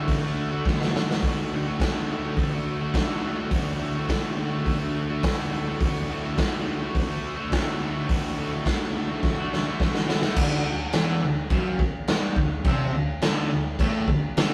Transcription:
Already playing: D2 A2 D3 A3 F#4
0.08 kick, open hi-hat
0.22 D3 A3 F#4
0.50 D3 A3 F#4
0.65 D2 A2 D3 A3, kick, snare
0.69 F#4
0.78 D3 A3 F#4, snare
0.94 A2 D3 A3 F#4, snare
1.09 D3 A3 F#4, snare
1.23 D2 A2 D3 A3 F#4, kick, open hi-hat
1.51 A2 D3 A3 F#4
1.66 D3 A3 F#4
1.80 D2 A2 D3 A3, kick, snare, open hi-hat
1.85 F#4
2.10 A2 D3 A3 F#4
2.23 D3 A3 F#4
2.37 kick, open hi-hat
2.52 D3 A3 F#4
2.81 D3 A3 F#4
2.94 D2 A2 D3 A3, kick, snare, open hi-hat
2.99 F#4
3.10 D3 A3 F#4
3.24 A2 D3 A3 F#4
3.38 D3 A3 F#4
3.51 D2 A2 D3 A3, kick, open hi-hat
3.55 F#4
3.80 A2 D3 A3 F#4
3.96 D3 A3 F#4
4.09 D2 A2 D3 A3, kick, snare, open hi-hat
4.13 F#4
4.37 A2 D3 A3 F#4
4.52 D3 A3 F#4
4.66 kick, open hi-hat
4.79 D3 A3 F#4
5.08 D3 A3 F#4
5.23 D2 A2 D3 A3 F#4, kick, snare, open hi-hat
5.38 A3 F#4
5.42 D3
5.51 A2 D3 A3 F#4
5.66 D3 A3 F#4
5.80 D2 A2 D3 A3 F#4, kick, open hi-hat
6.09 A2 D3 A3 F#4
6.24 D3 A3 F#4
6.36 D2 A2 D3 A3 F#4, kick, snare, open hi-hat
6.64 A2 D3 A3
6.69 F#4
6.79 A3 F#4
6.84 D3
6.95 kick, open hi-hat
7.08 D3 A3 F#4
7.36 A3 F#4
7.40 D3
7.50 D2 A2 D3 A3, kick, snare, open hi-hat
7.54 F#4
7.65 A3 F#4
7.69 D3
7.80 A2 D3 A3 F#4
7.93 D3 A3 F#4
8.08 D2 A2 D3 A3 F#4, kick, open hi-hat
8.36 A2 D3 A3 F#4
8.51 D3 A3 F#4
8.65 D2 A2 D3 A3 F#4, kick, snare, open hi-hat
8.94 A2 D3 A3 F#4
9.09 D3 A3 F#4
9.23 kick, snare
9.38 D3 A3 F#4
9.53 snare
9.67 D3 A3 F#4
9.80 D2 A2 D3 A3, kick, snare
9.84 F#4
9.94 D3 A3 F#4, snare
10.08 A2 D3 A3 F#4, snare
10.22 D3 A3 F#4, snare
10.36 D2 D3, kick, crash
10.66 D2
10.93 E2 E3, snare, crash
11.24 D2
11.50 F#2 F#3, kick, crash
11.79 muted overdriven electric guitar stroke, kick
12.07 G2 G3, snare, crash
12.36 D2, kick
12.65 C3 C4, kick, crash
12.94 D2
13.22 D2 D3, snare, crash
13.51 D2
13.79 A2 A3, kick, crash
14.08 D2, kick
14.37 D2 D3, snare, crash

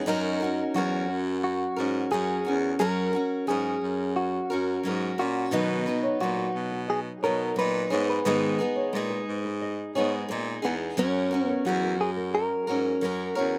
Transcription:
0.06 F#2 F#3 C#4 D#4 F#4 A#4
0.40 C#4 F#4 A#4
0.74 E2 F#3 C#4 F#4 A#4
1.10 F#2
1.44 F#4
1.76 G#2 C#4 F#4 A#4
2.11 F#2 F#3 C#4 F#4 G#4 A#4
2.45 E2 C#4 F#4 A#4
2.79 F#2 F#3 C#4 F#4 A#4
3.13 C#4 F#4 A#4
3.47 G#2 F#3 C#4 F#4 G#4 A#4
3.83 F#2
4.16 F#4
4.50 F#2 C#4 F#4 A#4
4.83 G#2 F#3 C#4 F#4 A#4
5.18 A#2 C#4 F#4 A#4
5.51 B2 D#3 F#3 B3 D#4 B4
5.86 F#3 B3 D#4 B4
6.03 C#5
6.20 A#2 F#3 D#4 F#4 B4
6.37 B4
6.55 B2
6.71 B4
6.88 G#4 D#5
7.23 B2 F#3 B3 D#4 A#4 C#5
7.56 A#2 F#3 D#4 B4
7.90 G#2 G#3 B3 D#4 G#4 C#5
8.10 B4
8.25 G#2 D#3 G#3 B3 D#4 G#4 B4
8.59 G#3 B3 D#4 G#4
8.76 C#5
8.93 A#2 G#3 D#4 G#4
9.10 B4
9.28 G#2
9.45 B4
9.62 D#5
9.95 G#2 G#3 B3 D#4 G#4 C#5
10.29 A#2 G#3 D#4 G#4 B4
10.62 E2 G#3 B3 D#4 G#4
10.97 F#2 F#3 C#4 F#4 A#4
11.31 C#4 F#4 A#4
11.47 B3 C#5
11.65 E2 F#3 C#4 F#4 A#4
11.83 A#4
12.00 F#2 G#4
12.17 A#4
12.34 A#4 D#5
12.67 G#2 C#4 F#4 A#4 C#5
13.01 F#2 F#3 C#4 F#4 A#4
13.35 E2 C#4 F#4 A#4 C#5

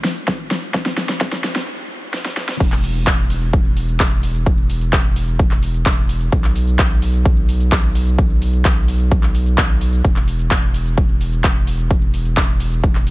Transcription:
0.04 snare, open hi-hat, shaker
0.16 closed hi-hat, shaker
0.28 kick, snare, closed hi-hat, shaker
0.40 closed hi-hat
0.51 snare, open hi-hat, shaker
0.63 closed hi-hat, shaker
0.74 kick, snare, closed hi-hat, shaker
0.86 snare, closed hi-hat
0.98 snare, open hi-hat, shaker
1.09 snare, closed hi-hat, shaker
1.21 kick, snare, closed hi-hat, shaker
1.33 snare, open hi-hat
1.44 snare, open hi-hat, shaker
1.56 snare, shaker
2.14 snare
2.26 snare
2.37 snare
2.49 snare
2.60 E1, kick, closed hi-hat, crash, shaker
2.72 clap, closed hi-hat
2.84 open hi-hat, shaker
2.95 closed hi-hat, shaker
3.07 kick, clap, closed hi-hat, shaker
3.19 closed hi-hat
3.30 open hi-hat, shaker
3.42 closed hi-hat, shaker
3.53 kick, closed hi-hat, shaker
3.65 closed hi-hat
3.77 open hi-hat, shaker
3.88 closed hi-hat, shaker
4.00 kick, clap, closed hi-hat, shaker
4.12 closed hi-hat
4.23 open hi-hat, shaker
4.35 closed hi-hat, shaker
4.46 kick, closed hi-hat, shaker
4.58 closed hi-hat
4.70 open hi-hat, shaker
4.81 closed hi-hat, shaker
4.93 kick, clap, closed hi-hat, shaker
5.05 closed hi-hat
5.16 open hi-hat, shaker
5.28 closed hi-hat, shaker
5.39 kick, closed hi-hat, shaker
5.51 clap, closed hi-hat
5.63 open hi-hat, shaker
5.74 closed hi-hat, shaker
5.86 kick, clap, closed hi-hat, shaker
5.98 closed hi-hat
6.09 open hi-hat, shaker
6.21 closed hi-hat, shaker
6.32 B1, kick, closed hi-hat, shaker
6.44 clap, closed hi-hat
6.56 open hi-hat, shaker
6.67 closed hi-hat, shaker
6.79 kick, clap, closed hi-hat, shaker
6.91 closed hi-hat
7.02 open hi-hat, shaker
7.14 closed hi-hat, shaker
7.25 kick, closed hi-hat, shaker
7.37 closed hi-hat
7.49 open hi-hat, shaker
7.60 closed hi-hat, shaker
7.72 kick, clap, closed hi-hat, shaker
7.84 closed hi-hat
7.95 open hi-hat, shaker
8.07 closed hi-hat, shaker
8.19 kick, closed hi-hat, shaker
8.30 closed hi-hat
8.42 open hi-hat, shaker
8.53 closed hi-hat, shaker
8.65 kick, clap, closed hi-hat, shaker
8.77 closed hi-hat
8.88 open hi-hat, shaker
9.00 closed hi-hat, shaker
9.12 kick, closed hi-hat, shaker
9.23 clap, closed hi-hat
9.35 open hi-hat, shaker
9.46 closed hi-hat, shaker
9.58 kick, clap, closed hi-hat, shaker
9.70 closed hi-hat
9.81 open hi-hat, shaker
9.93 closed hi-hat, shaker
10.04 E1, kick, closed hi-hat, shaker
10.16 clap, closed hi-hat
10.28 open hi-hat, shaker
10.39 closed hi-hat, shaker
10.51 kick, clap, closed hi-hat, shaker
10.63 closed hi-hat
10.74 open hi-hat, shaker
10.86 closed hi-hat, shaker
10.97 kick, closed hi-hat, shaker
11.09 closed hi-hat
11.21 open hi-hat, shaker
11.32 closed hi-hat, shaker
11.44 kick, clap, closed hi-hat, shaker
11.56 closed hi-hat
11.67 open hi-hat, shaker
11.79 closed hi-hat, shaker
11.91 kick, closed hi-hat, shaker
12.02 closed hi-hat
12.14 open hi-hat, shaker
12.25 closed hi-hat, shaker
12.37 kick, clap, closed hi-hat, shaker
12.49 closed hi-hat
12.60 open hi-hat, shaker
12.72 closed hi-hat, shaker
12.84 kick, closed hi-hat, shaker
12.95 clap, closed hi-hat
13.07 open hi-hat, shaker

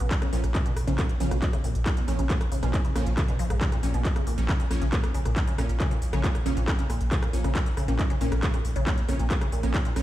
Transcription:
0.00 A#1 B2
0.11 kick, clap, closed hi-hat
0.22 C#3, cross-stick, closed hi-hat
0.33 A#1 A#2 F3 A#3 C#4, open hi-hat
0.44 A#1, cross-stick, closed hi-hat
0.55 C#3, kick, clap, closed hi-hat
0.66 B2, closed hi-hat
0.76 A#1, cross-stick, open hi-hat
0.87 A#1 C#3 F3 A#3 C#4, closed hi-hat
0.98 A#2, kick, cross-stick, clap, closed hi-hat
1.09 closed hi-hat
1.20 A#1 C#3 F3 A#3 C#4, open hi-hat
1.31 A#1 B2, cross-stick, closed hi-hat
1.42 kick, clap, closed hi-hat
1.53 C#3, cross-stick, closed hi-hat
1.64 A#1 A#2, open hi-hat
1.75 A#1, closed hi-hat
1.86 C#3, kick, cross-stick, clap, closed hi-hat
1.97 B2, closed hi-hat
2.08 A#1 F3 A#3 C#4, cross-stick, open hi-hat
2.19 A#1 C#3, closed hi-hat
2.30 A#2, kick, clap, closed hi-hat
2.41 cross-stick, closed hi-hat
2.52 A#1 C#3, open hi-hat
2.63 A#1 B2 F3 A#3 C#4, cross-stick, closed hi-hat
2.74 kick, clap, closed hi-hat
2.85 C#3, closed hi-hat
2.95 A#1 A#2 F3 A#3 C#4, cross-stick, open hi-hat
3.06 A#1, closed hi-hat
3.17 C#3, kick, cross-stick, clap, closed hi-hat
3.28 B2, closed hi-hat
3.39 A#1 F3, open hi-hat
3.50 A#1 G#2, cross-stick, closed hi-hat
3.61 C#3, kick, clap, closed hi-hat
3.72 A#2, cross-stick, closed hi-hat
3.83 A#1 A#2 F3 A#3 C#4, open hi-hat
3.94 A#1 B2, closed hi-hat
4.05 kick, clap, closed hi-hat
4.16 C#3, cross-stick, closed hi-hat
4.27 A#1 A#2, open hi-hat
4.38 A#1 F3 A#3 C#4, closed hi-hat
4.49 C#3, kick, cross-stick, clap, closed hi-hat
4.60 A#2, closed hi-hat
4.71 A#1 F3 A#3 C#4, cross-stick, open hi-hat
4.82 A#1 C#3, closed hi-hat
4.93 A#2, kick, clap, closed hi-hat
5.04 cross-stick, closed hi-hat
5.14 A#1 C#3, open hi-hat
5.25 A#1 A#2, cross-stick, closed hi-hat
5.36 kick, clap, closed hi-hat
5.47 C#3, closed hi-hat
5.58 A#1 A#2 F3 A#3 C#4, cross-stick, open hi-hat
5.69 A#1, closed hi-hat
5.80 C#3, kick, cross-stick, clap, closed hi-hat
5.91 A#2, closed hi-hat
6.02 A#1, open hi-hat
6.13 A#1 C#3 F3 A#3 C#4, cross-stick, closed hi-hat
6.24 A#2, kick, clap, closed hi-hat
6.35 cross-stick, closed hi-hat
6.46 A#1 C#3 F3 A#3 C#4, open hi-hat
6.57 A#1 A#2, closed hi-hat
6.68 kick, cross-stick, clap, closed hi-hat
6.79 C#3, closed hi-hat
6.89 A#1 A#2, cross-stick, open hi-hat
7.01 A#1, closed hi-hat
7.11 C#3, kick, clap, closed hi-hat
7.23 A#2, cross-stick, closed hi-hat
7.33 A#1 F3 A#3 C#4, open hi-hat
7.44 A#1 C#3, cross-stick, closed hi-hat
7.55 A#2, kick, clap, closed hi-hat
7.66 closed hi-hat
7.77 A#1 C#3, cross-stick, open hi-hat
7.88 A#1 A#2 F3 A#3 C#4, closed hi-hat
7.99 kick, cross-stick, clap, closed hi-hat
8.10 C#3, closed hi-hat
8.21 A#1 A#2 F3 A#3 C#4, open hi-hat
8.32 A#1, cross-stick, closed hi-hat
8.43 C#3, kick, clap, closed hi-hat
8.54 A#2, cross-stick, closed hi-hat
8.65 A#1, open hi-hat
8.76 A#1 C#3, closed hi-hat
8.87 A#2, kick, cross-stick, clap, closed hi-hat
8.98 closed hi-hat
9.08 A#1 C#3 F3 A#3 C#4, cross-stick, open hi-hat
9.19 A#1 A#2, closed hi-hat
9.30 kick, clap, closed hi-hat
9.41 C#3, cross-stick, closed hi-hat
9.52 A#1 A#2, open hi-hat
9.63 A#1 F3 A#3 C#4, cross-stick, closed hi-hat
9.74 C#3, kick, clap, closed hi-hat
9.85 A#2, closed hi-hat
9.96 A#1 F3 A#3 C#4, cross-stick, open hi-hat

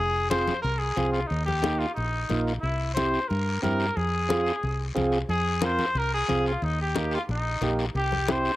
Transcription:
Already playing: F1 G#4
0.30 C4 F4 G#4 C5, high conga, short guiro
0.47 high conga, short guiro
0.62 C2 A#4, high conga, long guiro
0.79 G#4
0.97 C2 C4 F4 G#4, high conga, short guiro
1.12 F4, short guiro
1.27 D#2 D#4, high conga, long guiro
1.46 G4, high conga
1.62 A#3 D#4 G4, high conga, short guiro
1.79 F4, short guiro
1.94 A#1 D#4, high conga, long guiro
2.29 A#1 A#3 D#4 F4, high conga, short guiro
2.47 short guiro
2.61 C2 E4, high conga, long guiro
2.94 C4 E4 G4 C5, high conga, short guiro
3.14 short guiro
3.28 G2 A#4, high conga, long guiro
3.62 G2 C4 E4 G4 A#4, high conga, short guiro
3.80 short guiro
3.97 F2 G#4, high conga, long guiro
4.29 C4 F4 G#4, high conga, short guiro
4.46 short guiro
4.63 C2, high conga, long guiro
4.95 C2 C4 F4 G#4, high conga, short guiro
5.12 short guiro
5.29 F2 G#4, high conga, long guiro
5.62 C4 F4 A#4 C5, high conga, short guiro
5.79 high conga, short guiro
5.95 C2 A#4, high conga, long guiro
6.14 G#4
6.28 C2 C4 F4 G#4, high conga, short guiro
6.45 F4, short guiro
6.62 D#2 D#4, high conga, long guiro
6.81 G4
6.95 A#3 D#4 G4, high conga, short guiro
7.11 F4, short guiro
7.29 A#1 D#4, high conga, long guiro
7.61 A#1 A#3 D#4 G4, high conga, short guiro
7.79 short guiro
7.95 C2 G4, high conga, long guiro
8.12 high conga
8.28 C4 E4 G4 C5, high conga, short guiro
8.45 short guiro

